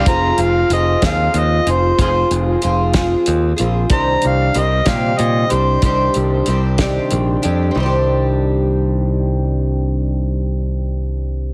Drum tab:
HH |xxxxxx|xxxxxx|xxxxxx|xxxxxx|
SD |---o--|---o--|---o--|---o--|
BD |o--o--|o--o--|o--o--|o--o--|

HH |------|------|
SD |------|------|
BD |------|------|